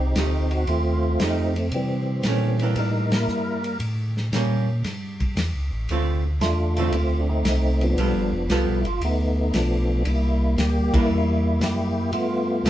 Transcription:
0.00 0.14 C2 medium
0.00 0.64 C4 medium
0.00 0.65 D#4 medium
0.00 0.12 G4 medium
0.15 0.66 D2 medium
0.15 0.49 F3 soft
0.15 0.49 A3 medium
0.15 0.49 D#4 medium
0.15 0.49 G4 medium
0.15 snare medium
0.15 hi-hat pedal medium
0.15 ride medium
0.51 0.68 F#4 loud
0.51 ride soft
0.67 1.18 D#2 medium
0.67 1.69 A3 medium
0.67 1.56 C4 medium
0.67 1.22 F4 loud
0.67 ride medium
1.20 1.71 F2 medium
1.20 1.53 F3 medium
1.20 1.53 A3 medium
1.20 1.54 D#4 medium
1.20 1.54 G4 medium
1.20 snare medium
1.20 hi-hat pedal medium
1.20 ride medium
1.56 1.73 C4 medium
1.56 ride soft
1.71 2.22 C3 medium
1.71 2.74 E3 medium
1.71 2.58 C4 medium
1.71 ride medium
1.76 2.74 G3 medium
2.23 2.75 A#2 medium
2.23 2.57 D#3 medium
2.23 2.58 A3 medium
2.23 2.58 C#4 medium
2.23 snare medium
2.23 hi-hat pedal medium
2.23 ride medium
2.59 3.06 E3 medium
2.59 3.07 A#3 medium
2.59 2.78 C4 medium
2.59 ride soft
2.63 3.07 D4 medium
2.76 3.27 A2 medium
2.76 3.13 G3 medium
2.76 3.11 D#4 medium
2.76 3.78 A#4 medium
2.76 ride medium
3.12 3.78 G3 medium
3.12 3.77 A#3 medium
3.12 3.62 E4 medium
3.12 snare medium
3.12 ride medium
3.28 3.79 G2 medium
3.28 hi-hat pedal medium
3.64 ride soft
3.80 4.31 A2 medium
3.80 ride medium
4.17 snare soft
4.32 4.83 A#2 medium
4.32 4.66 G3 medium
4.32 4.66 A#3 medium
4.32 4.66 C#4 medium
4.32 snare medium
4.32 hi-hat pedal medium
4.32 ride medium
4.84 5.35 G2 medium
4.84 snare soft
4.84 ride medium
5.20 kick medium
5.20 ride soft
5.36 5.54 E2 medium
5.36 snare medium
5.36 hi-hat pedal medium
5.36 ride medium
5.55 5.72 C#2 medium
5.71 5.88 A1 medium
5.89 6.40 D2 medium
5.89 6.22 D3 medium
5.89 6.23 A3 medium
5.89 6.23 C4 medium
5.89 6.23 F4 medium
5.89 ride medium
6.40 6.91 E2 medium
6.40 6.93 A3 medium
6.40 6.95 D4 medium
6.40 6.93 F4 medium
6.40 snare medium
6.40 hi-hat pedal medium
6.40 ride medium
6.77 6.92 D3 medium
6.77 6.93 A3 medium
6.77 6.93 C4 medium
6.77 6.93 F4 medium
6.77 ride soft
6.92 7.43 D2 medium
6.92 7.29 A3 medium
6.92 7.30 C4 medium
6.92 7.21 F4 loud
6.92 ride medium
7.20 7.30 D4 medium
7.30 7.94 A3 medium
7.30 7.94 C4 medium
7.30 7.83 D#4 medium
7.44 7.95 C2 medium
7.44 snare medium
7.44 hi-hat pedal medium
7.44 ride medium
7.81 8.82 F3 medium
7.81 8.82 B3 medium
7.81 8.47 D4 medium
7.81 ride soft
7.96 8.14 B1 medium
7.96 8.31 G3 medium
7.96 8.30 B3 medium
7.96 8.31 F4 medium
7.96 8.31 A4 medium
7.96 ride medium
8.15 8.32 G1 medium
8.32 8.48 F1 medium
8.49 8.66 C2 medium
8.49 8.82 G3 medium
8.49 8.83 B3 medium
8.49 8.83 F4 medium
8.49 8.83 A4 medium
8.49 snare medium
8.49 hi-hat pedal medium
8.49 ride medium
8.68 8.85 B1 medium
8.76 8.86 E4 medium
8.84 9.00 G1 medium
8.84 9.03 F4 medium
8.84 ride soft
9.01 9.52 D2 medium
9.01 10.03 A3 medium
9.01 9.54 B3 medium
9.01 ride medium
9.05 9.40 D#4 medium
9.41 9.56 D#4 medium
9.54 10.04 B1 medium
9.54 10.03 F3 medium
9.54 10.03 B3 medium
9.54 10.08 D4 medium
9.54 snare medium
9.54 hi-hat pedal medium
9.54 ride medium
10.05 10.56 C2 medium
10.05 10.94 G3 medium
10.05 10.94 A#3 medium
10.05 10.55 E4 medium
10.05 ride medium
10.57 10.91 D2 medium
10.57 10.96 G4 medium
10.57 snare medium
10.57 hi-hat pedal medium
10.57 ride medium
10.93 11.02 D2 soft
10.93 11.08 E3 medium
10.93 11.95 G3 medium
10.93 11.09 A#3 medium
10.93 11.62 A#3 medium
10.93 11.09 D4 medium
10.93 11.62 E4 loud
10.93 kick medium
10.93 ride medium
11.09 11.60 E2 medium
11.61 12.12 F#2 medium
11.61 12.11 A#3 medium
11.61 12.11 E4 medium
11.61 12.11 G4 medium
11.61 snare medium
11.61 hi-hat pedal medium
11.61 ride medium
12.12 12.64 G2 medium
12.12 12.70 A3 medium
12.12 12.70 B3 medium
12.12 12.70 F4 medium
12.12 ride medium
12.65 12.70 F2 medium
12.65 12.70 G3 medium
12.65 12.70 B3 medium
12.65 12.70 F4 medium
12.65 12.70 A4 medium
12.65 snare medium
12.65 hi-hat pedal medium
12.65 ride medium

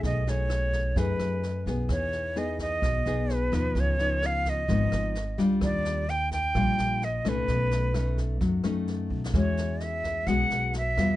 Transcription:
0.00 0.92 B1 medium
0.00 0.94 B2 soft
0.00 0.23 A3 medium
0.00 0.23 D#4 soft
0.00 0.23 G#4 medium
0.00 kick medium
0.00 snare soft
0.05 0.31 D#5 medium
0.27 0.93 A3 medium
0.27 0.93 D#4 medium
0.27 0.93 G#4 medium
0.27 0.99 C#5 medium
0.27 snare soft
0.50 cross-stick medium
0.50 snare soft
0.73 kick soft
0.73 snare soft
0.96 1.18 F#2 medium
0.96 1.87 F#2 soft
0.96 1.43 A3 soft
0.96 1.43 D#4 soft
0.96 1.43 G#4 medium
0.96 1.67 B4 medium
0.96 kick soft
0.96 snare soft
1.19 1.63 F#2 medium
1.19 cross-stick medium
1.19 snare soft
1.43 snare soft
1.66 1.88 B1 medium
1.66 2.33 B3 medium
1.66 2.33 D#4 soft
1.66 2.33 G#4 medium
1.66 kick soft
1.66 snare soft
1.89 2.78 E2 medium
1.89 2.80 E3 soft
1.89 2.40 C#5 medium
1.89 kick soft
1.89 cross-stick medium
1.89 snare soft
2.13 snare soft
2.36 3.02 B3 medium
2.36 3.02 D#4 soft
2.36 3.03 G#4 soft
2.36 2.60 D#5 medium
2.36 snare soft
2.59 3.35 D#5 medium
2.59 kick soft
2.59 snare soft
2.82 3.04 B1 medium
2.82 3.73 B2 medium
2.82 kick soft
2.82 cross-stick medium
2.82 snare soft
3.06 3.49 B1 medium
3.06 3.49 B3 medium
3.06 3.49 D#4 medium
3.06 3.49 G#4 medium
3.06 snare soft
3.29 snare soft
3.34 3.81 B4 medium
3.52 3.74 D#2 medium
3.52 3.95 F3 medium
3.52 3.95 B3 medium
3.52 3.96 D#4 medium
3.52 kick soft
3.52 cross-stick medium
3.52 snare soft
3.75 4.65 C#2 medium
3.75 4.67 C#3 soft
3.75 kick medium
3.75 snare soft
3.80 4.27 C#5 medium
3.99 4.66 F3 medium
3.99 4.66 B3 medium
3.99 4.66 D#4 medium
3.99 snare soft
4.23 4.51 F5 medium
4.23 cross-stick medium
4.23 snare soft
4.45 kick soft
4.45 snare soft
4.49 5.41 D#5 medium
4.68 4.90 G#1 medium
4.68 5.60 G#2 soft
4.68 5.15 F3 soft
4.68 5.16 B3 soft
4.68 5.16 D#4 medium
4.68 kick soft
4.68 snare soft
4.92 5.36 G#1 medium
4.92 cross-stick medium
4.92 snare soft
5.15 snare soft
5.38 5.60 C#2 medium
5.38 6.05 G3 medium
5.38 6.05 D4 medium
5.38 6.05 F4 medium
5.38 kick soft
5.38 snare soft
5.61 6.51 D#2 medium
5.61 6.53 D#3 soft
5.61 6.11 D5 medium
5.61 kick medium
5.61 cross-stick medium
5.61 snare soft
5.85 snare soft
6.08 6.32 G5 medium
6.08 snare soft
6.31 7.06 G5 medium
6.31 kick soft
6.31 snare soft
6.55 6.77 A#1 medium
6.55 7.46 A#2 soft
6.55 7.02 G3 medium
6.55 7.02 D4 soft
6.55 7.02 F4 medium
6.55 kick medium
6.55 cross-stick soft
6.55 snare soft
6.78 7.22 A#1 medium
6.78 snare soft
7.02 7.30 D#5 medium
7.02 snare soft
7.25 7.47 C2 medium
7.25 7.91 A3 medium
7.25 7.92 C#4 medium
7.25 7.92 D#4 medium
7.25 8.20 B4 medium
7.25 kick soft
7.25 cross-stick medium
7.25 snare soft
7.48 8.37 B1 medium
7.48 8.40 B2 soft
7.48 kick medium
7.48 snare soft
7.71 snare soft
7.94 8.61 A3 soft
7.94 8.61 C#4 medium
7.94 8.61 D#4 medium
7.94 cross-stick medium
7.94 snare soft
8.18 kick soft
8.18 snare soft
8.41 8.63 F#2 medium
8.41 9.32 F#3 medium
8.41 kick medium
8.41 snare soft
8.64 9.08 F#2 medium
8.64 9.31 A3 medium
8.64 9.31 C#4 medium
8.64 9.31 D#4 medium
8.64 cross-stick medium
8.64 snare soft
8.88 snare soft
9.10 9.32 B1 medium
9.10 kick soft
9.26 snare soft
9.33 10.23 E2 medium
9.33 10.25 E3 soft
9.33 10.24 G#3 soft
9.33 10.24 C#4 soft
9.33 10.24 F#4 soft
9.33 9.85 C#5 medium
9.33 kick medium
9.33 cross-stick medium
9.33 snare soft
9.57 snare soft
9.80 10.29 E5 medium
9.80 snare soft
10.04 kick soft
10.04 snare soft
10.27 10.49 B1 medium
10.27 11.16 B2 soft
10.27 10.74 G#3 soft
10.27 10.74 C#4 soft
10.27 10.74 F#4 medium
10.27 10.74 F#5 medium
10.27 kick soft
10.27 cross-stick medium
10.27 snare soft
10.50 10.94 B1 medium
10.50 snare soft
10.73 snare soft
10.78 11.16 E5 medium
10.97 11.16 E2 medium
10.97 11.16 G3 medium
10.97 11.16 B3 medium
10.97 11.16 F4 medium
10.97 kick soft
10.97 cross-stick medium
10.97 snare soft

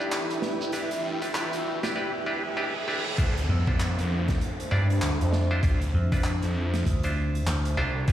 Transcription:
0.00 0.10 G2 loud
0.00 0.27 D4 medium
0.00 0.71 D4 medium
0.00 0.71 E4 medium
0.00 1.92 E4 medium
0.00 1.96 E4 medium
0.00 0.71 G4 medium
0.00 1.92 G4 medium
0.00 0.71 B4 medium
0.00 1.96 B4 medium
0.00 1.92 D5 medium
0.00 1.96 E5 medium
0.00 1.96 G5 medium
0.00 riser medium
0.12 clap loud
0.12 closed hi-hat loud
0.12 shekere medium
0.30 closed hi-hat medium
0.30 shekere soft
0.42 snare medium
0.61 shekere medium
0.72 1.02 E2 loud
0.72 0.90 D4 medium
0.72 0.90 E4 medium
0.72 0.90 G4 medium
0.72 0.90 B4 medium
0.72 kick loud
0.72 closed hi-hat medium
0.72 shekere medium
0.91 closed hi-hat medium
0.91 shekere soft
1.04 1.50 G2 loud
1.22 1.32 D4 medium
1.22 1.32 E4 medium
1.22 1.32 G4 medium
1.22 1.32 B4 medium
1.22 kick loud
1.22 closed hi-hat medium
1.22 shekere medium
1.34 1.51 D4 medium
1.34 1.51 E4 medium
1.34 1.51 G4 medium
1.34 1.51 B4 medium
1.34 clap loud
1.34 closed hi-hat medium
1.34 shekere medium
1.52 1.81 E2 loud
1.52 closed hi-hat medium
1.52 shekere soft
1.83 1.94 D4 medium
1.83 1.94 E4 medium
1.83 1.94 G4 medium
1.83 1.94 B4 medium
1.83 snare soft
1.83 closed hi-hat medium
1.83 shekere medium
1.96 2.12 D4 medium
1.96 2.12 E4 medium
1.96 2.12 G4 medium
1.96 2.12 B4 medium
1.96 reverse cymbal medium
2.26 2.43 D4 medium
2.26 2.43 E4 medium
2.26 2.43 G4 medium
2.26 2.43 B4 medium
2.57 2.73 D4 medium
2.57 2.74 E4 medium
2.57 2.74 G4 medium
2.57 2.74 B4 medium
2.88 3.04 D4 medium
2.88 3.04 E4 medium
2.88 3.04 G4 medium
2.88 3.04 B4 medium
3.18 3.47 D2 loud
3.18 3.35 D4 medium
3.18 8.04 D4 medium
3.18 3.35 E4 medium
3.18 3.35 F4 medium
3.18 3.35 C5 medium
3.18 8.04 C5 medium
3.18 8.04 E5 medium
3.18 kick loud
3.18 closed hi-hat medium
3.18 crash loud
3.18 downlifter medium
3.37 closed hi-hat medium
3.49 3.95 F2 loud
3.67 4.68 D4 medium
3.67 4.68 E4 medium
3.67 4.68 F4 medium
3.67 4.68 C5 medium
3.67 kick loud
3.80 clap loud
3.80 closed hi-hat medium
3.98 4.39 F2 loud
3.98 closed hi-hat medium
4.28 kick loud
4.28 snare medium
4.28 closed hi-hat medium
4.41 closed hi-hat medium
4.60 closed hi-hat medium
4.71 5.00 G2 loud
4.71 4.88 D4 medium
4.71 4.88 E4 medium
4.71 4.88 F4 medium
4.71 4.88 D5 loud
4.90 closed hi-hat medium
5.02 5.18 D2 medium
5.02 clap loud
5.02 closed hi-hat loud
5.21 5.61 F2 loud
5.21 closed hi-hat medium
5.33 snare medium
5.51 5.61 D4 loud
5.51 5.61 E4 medium
5.51 5.61 F4 medium
5.51 5.61 C5 loud
5.63 5.92 D2 loud
5.63 5.80 D4 medium
5.63 5.80 E4 medium
5.63 5.80 F4 medium
5.63 5.80 C5 medium
5.63 kick loud
5.63 closed hi-hat medium
5.82 closed hi-hat medium
5.94 6.40 F2 medium
6.12 6.32 D4 medium
6.12 6.32 E4 medium
6.12 6.32 F4 medium
6.12 6.32 B4 loud
6.12 kick loud
6.12 closed hi-hat medium
6.14 closed hi-hat soft
6.20 clap loud
6.20 closed hi-hat soft
6.25 closed hi-hat medium
6.42 6.84 F2 loud
6.42 closed hi-hat medium
6.74 snare medium
6.74 closed hi-hat medium
6.85 7.45 D2 medium
6.85 kick medium
6.85 closed hi-hat medium
7.03 7.74 D4 medium
7.03 7.74 E4 medium
7.03 7.74 F4 medium
7.03 7.74 C5 medium
7.03 closed hi-hat medium
7.35 closed hi-hat soft
7.47 7.75 D2 medium
7.47 clap loud
7.47 closed hi-hat loud
7.65 closed hi-hat medium
7.77 8.06 C2 loud
7.77 8.05 D4 loud
7.77 8.05 E4 medium
7.77 8.05 F4 medium
7.77 8.05 C5 loud
8.08 8.12 E2 loud
8.08 8.12 D4 medium
8.08 8.12 E4 medium
8.08 8.12 G4 medium
8.08 8.12 B4 medium
8.08 8.12 D5 medium
8.08 kick loud
8.08 closed hi-hat medium

